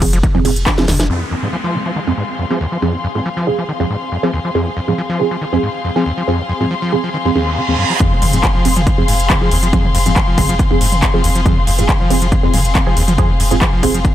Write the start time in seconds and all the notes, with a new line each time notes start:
0.02 F1 G#2 F3 C4 G#4, kick, open hi-hat, ride
0.13 F1 F3, closed hi-hat
0.23 D#3, kick, closed hi-hat
0.35 F2 F3 C4 G#4, mid tom
0.45 F1 G#2 F3 C4 G#4, open hi-hat, ride
0.56 F1, closed hi-hat
0.67 F2, kick, snare, clap, closed hi-hat
0.78 F3 C4 G#4, snare
0.88 F1 D#2, snare, mid tom, open hi-hat, ride
0.99 F1 F3, snare, closed hi-hat
1.10 F2 F3 C4 G#4, downlifter
1.21 D#2 G#4
1.31 F2, closed hi-hat
1.39 G#4 F5 C6
1.43 G#2 F3 C4
1.53 F3
1.64 F3
1.74 G#2 F3 C4 G#4
1.86 F3
1.96 D#3
2.07 F2 F3 C4 G#4
2.18 G#2
2.39 F2
2.50 F3 C4 G#4
2.61 D#2
2.72 F3
2.82 F2 F3 C4 G#4
2.94 D#2
3.04 F2
3.15 G#2 F3 C4 G#4
3.26 F3
3.37 F3
3.47 G#2 F3 C4 G#4
3.58 F3
3.69 D#3
3.80 F2 F3 C4 G#4
3.90 G#2
4.02 closed hi-hat
4.12 F2, closed hi-hat
4.23 F3 C4 G#4
4.33 D#2, closed hi-hat
4.45 F3
4.55 F2 F3 C4 G#4
4.66 D#2
4.77 F2, closed hi-hat
4.88 G#2 F3 C4 G#4
4.98 F3, closed hi-hat
5.10 F3
5.20 G#2 F3 C4 G#4, closed hi-hat
5.31 F3
5.41 D#3, closed hi-hat
5.53 F2 F3 C4 G#4
5.63 G#2, closed hi-hat
5.74 closed hi-hat
5.85 F2, closed hi-hat
5.96 F3 C4 G#4
6.06 D#2, closed hi-hat
6.18 F3, closed hi-hat
6.28 F2 F3 C4 G#4, closed hi-hat
6.39 D#2
6.49 F2, closed hi-hat
6.61 G#2 F3 C4 G#4, closed hi-hat
6.71 F3, closed hi-hat
6.82 F3
6.92 G#2 F3 C4 G#4, closed hi-hat
7.04 F3, closed hi-hat
7.14 D#3, closed hi-hat, reverse cymbal
7.25 F2 F3 C4 G#4
7.36 D#2 F3 C4 G#4, closed hi-hat
7.47 closed hi-hat
7.57 F3, closed hi-hat
7.68 D#2 F3 C4 G#4
7.79 F#2, closed hi-hat
7.90 F3
8.00 F2 F3 C4 G#4, kick, closed hi-hat, impact
8.12 D#2
8.22 F1 F2, mid tom, open hi-hat, ride
8.33 F1 G#2 F3 C4 G#4, closed hi-hat
8.44 F3, kick, clap, closed hi-hat
8.55 F3
8.65 F1 G#2 F3 C4 G#4, open hi-hat, ride
8.76 F1 F3, closed hi-hat, mid tom
8.87 D#3, kick, closed hi-hat
8.98 F2 F3 C4 G#4
9.08 F1 G#2, open hi-hat, ride
9.20 F1, closed hi-hat
9.30 F2, kick, clap, closed hi-hat, mid tom
9.41 F3 C4 G#4
9.51 F1 D#2, open hi-hat, ride
9.63 F1 F3, closed hi-hat
9.73 F2 F3 C4 G#4, kick, closed hi-hat
9.84 D#2, mid tom
9.95 F1 F2, open hi-hat, ride
10.06 F1 G#2 F3 C4 G#4, closed hi-hat
10.16 F3, kick, clap, closed hi-hat
10.27 F3
10.38 F1 G#2 F3 C4 G#4, kick, mid tom, open hi-hat, ride
10.49 F1 F3, closed hi-hat
10.59 D#3, kick, closed hi-hat
10.71 F2 F3 C4 G#4
10.81 F1 G#2, open hi-hat, ride
10.92 F1, closed hi-hat, mid tom
11.03 F2, kick, clap, closed hi-hat
11.14 F3 C4 G#4
11.24 F1 D#2, open hi-hat, ride
11.35 F1 F3, closed hi-hat
11.46 F2 F3 C4 G#4, kick, closed hi-hat, mid tom
11.57 D#2
11.67 F1 F2, open hi-hat, ride
11.78 F1 G#2 F3 C4 G#4, closed hi-hat
11.89 F3, kick, clap, closed hi-hat
12.00 F3, mid tom
12.10 F1 G#2 F3 C4 G#4, open hi-hat, ride
12.22 F1 F3, closed hi-hat
12.32 D#3, kick, closed hi-hat
12.43 F2 F3 C4 G#4
12.54 F1 G#2, mid tom, open hi-hat, ride
12.65 F1, closed hi-hat
12.75 F2, kick, clap, closed hi-hat
12.86 F3 C4 G#4
12.97 F1 D#2, open hi-hat, ride
13.08 F1 F3, closed hi-hat, mid tom
13.18 F2 F3 C4 G#4, kick, closed hi-hat
13.30 D#2
13.40 F1 F2, open hi-hat, ride
13.51 F1 G#2 F3 C4 G#4, closed hi-hat
13.61 F3, kick, clap, closed hi-hat, mid tom
13.73 F3
13.83 F1 G#2 F3 C4 G#4, kick, open hi-hat, ride
13.94 F1 F3, closed hi-hat
14.05 D#3, kick, closed hi-hat